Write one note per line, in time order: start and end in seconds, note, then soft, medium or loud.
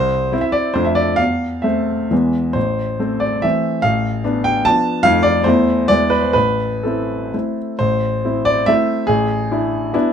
0.00 0.32 C2 medium
0.00 0.43 C5 loud
0.32 0.72 C4 medium
0.32 0.72 E4 medium
0.41 0.53 E5 medium
0.52 0.75 D5 loud
0.74 1.17 F2 medium
0.74 1.14 A3 medium
0.74 1.15 D4 medium
0.74 0.85 C5 medium
0.85 0.96 E5 medium
0.95 1.18 D5 loud
1.16 1.63 E2 medium
1.16 1.64 F5 loud
1.62 2.07 A3 medium
1.62 2.07 C4 medium
1.62 2.33 E5 medium
2.10 2.54 E2 medium
2.10 2.52 E3 soft
2.10 2.52 G#3 soft
2.10 2.52 B3 soft
2.53 2.99 A1 medium
2.53 3.21 C5 medium
3.00 3.40 A3 medium
3.00 3.40 C4 medium
3.20 3.43 D5 medium
3.42 3.80 E3 soft
3.42 3.80 A3 medium
3.42 3.80 C4 medium
3.42 3.83 E5 loud
3.82 4.23 A1 medium
3.82 4.45 F5 loud
4.24 4.62 B3 medium
4.24 4.62 D4 medium
4.44 4.65 G5 loud
4.65 5.01 F3 medium
4.65 5.01 B3 medium
4.65 5.02 D4 medium
4.65 5.04 A5 loud
5.03 5.44 F2 medium
5.03 5.41 F3 medium
5.03 5.42 A3 medium
5.03 5.42 D#4 medium
5.03 5.23 F5 loud
5.23 5.45 D5 loud
5.44 5.88 E2 medium
5.44 5.86 A3 medium
5.44 5.86 E4 medium
5.44 5.89 C5 loud
5.88 6.34 E2 medium
5.88 6.31 G#3 medium
5.88 6.32 B3 medium
5.88 6.32 E4 medium
5.88 6.11 D5 loud
6.10 6.22 B4 loud
6.22 6.35 C5 medium
6.33 6.84 A1 medium
6.33 6.84 B4 loud
6.83 7.30 C4 medium
6.83 7.30 E4 medium
6.83 7.57 A4 medium
7.34 7.76 A3 soft
7.34 7.76 C4 soft
7.34 7.77 E4 soft
7.79 8.24 A1 medium
7.79 8.47 C5 loud
8.25 8.65 C4 medium
8.25 8.65 E4 medium
8.45 8.68 D5 loud
8.66 9.04 A3 medium
8.66 9.04 C4 medium
8.66 9.05 E4 medium
8.66 9.08 E5 loud
9.07 9.50 A1 medium
9.07 10.13 G#4 loud
9.51 9.90 D4 medium
9.51 9.90 E4 medium
9.94 10.13 B3 medium
9.94 10.13 D4 medium
9.94 10.13 E4 medium